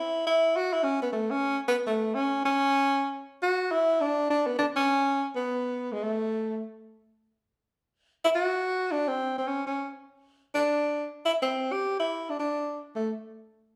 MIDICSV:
0, 0, Header, 1, 2, 480
1, 0, Start_track
1, 0, Tempo, 288046
1, 440, Time_signature, 4, 2, 24, 8
1, 22928, End_track
2, 0, Start_track
2, 0, Title_t, "Tenor saxophone"
2, 0, Program_c, 0, 66
2, 0, Note_on_c, 0, 64, 87
2, 434, Note_off_c, 0, 64, 0
2, 444, Note_on_c, 0, 64, 88
2, 934, Note_on_c, 0, 66, 98
2, 959, Note_off_c, 0, 64, 0
2, 1219, Note_on_c, 0, 64, 86
2, 1244, Note_off_c, 0, 66, 0
2, 1393, Note_on_c, 0, 61, 93
2, 1418, Note_off_c, 0, 64, 0
2, 1687, Note_off_c, 0, 61, 0
2, 1701, Note_on_c, 0, 59, 85
2, 1863, Note_off_c, 0, 59, 0
2, 1873, Note_on_c, 0, 57, 86
2, 2177, Note_on_c, 0, 61, 105
2, 2202, Note_off_c, 0, 57, 0
2, 2652, Note_off_c, 0, 61, 0
2, 2802, Note_on_c, 0, 59, 89
2, 2941, Note_off_c, 0, 59, 0
2, 3113, Note_on_c, 0, 57, 78
2, 3574, Note_on_c, 0, 61, 85
2, 3599, Note_off_c, 0, 57, 0
2, 4069, Note_off_c, 0, 61, 0
2, 4084, Note_on_c, 0, 61, 101
2, 5455, Note_off_c, 0, 61, 0
2, 5706, Note_on_c, 0, 66, 92
2, 6183, Note_on_c, 0, 64, 90
2, 6208, Note_off_c, 0, 66, 0
2, 6679, Note_on_c, 0, 62, 87
2, 6704, Note_off_c, 0, 64, 0
2, 7153, Note_off_c, 0, 62, 0
2, 7168, Note_on_c, 0, 62, 91
2, 7444, Note_on_c, 0, 59, 74
2, 7469, Note_off_c, 0, 62, 0
2, 7630, Note_off_c, 0, 59, 0
2, 7640, Note_on_c, 0, 62, 79
2, 7768, Note_off_c, 0, 62, 0
2, 7934, Note_on_c, 0, 61, 97
2, 8818, Note_off_c, 0, 61, 0
2, 8928, Note_on_c, 0, 59, 76
2, 9868, Note_on_c, 0, 56, 77
2, 9893, Note_off_c, 0, 59, 0
2, 10048, Note_on_c, 0, 57, 76
2, 10073, Note_off_c, 0, 56, 0
2, 10995, Note_off_c, 0, 57, 0
2, 13732, Note_on_c, 0, 64, 87
2, 13804, Note_off_c, 0, 64, 0
2, 13917, Note_on_c, 0, 66, 90
2, 14858, Note_on_c, 0, 62, 87
2, 14883, Note_off_c, 0, 66, 0
2, 15132, Note_on_c, 0, 60, 78
2, 15157, Note_off_c, 0, 62, 0
2, 15603, Note_off_c, 0, 60, 0
2, 15627, Note_on_c, 0, 60, 75
2, 15791, Note_on_c, 0, 61, 75
2, 15816, Note_off_c, 0, 60, 0
2, 16078, Note_off_c, 0, 61, 0
2, 16106, Note_on_c, 0, 61, 63
2, 16539, Note_off_c, 0, 61, 0
2, 17578, Note_on_c, 0, 62, 88
2, 18444, Note_off_c, 0, 62, 0
2, 18755, Note_on_c, 0, 64, 88
2, 18867, Note_off_c, 0, 64, 0
2, 19032, Note_on_c, 0, 60, 80
2, 19530, Note_on_c, 0, 67, 93
2, 19555, Note_off_c, 0, 60, 0
2, 19966, Note_off_c, 0, 67, 0
2, 19992, Note_on_c, 0, 64, 81
2, 20492, Note_on_c, 0, 62, 70
2, 20517, Note_off_c, 0, 64, 0
2, 20637, Note_off_c, 0, 62, 0
2, 20653, Note_on_c, 0, 62, 76
2, 21343, Note_off_c, 0, 62, 0
2, 21592, Note_on_c, 0, 57, 71
2, 21846, Note_off_c, 0, 57, 0
2, 22928, End_track
0, 0, End_of_file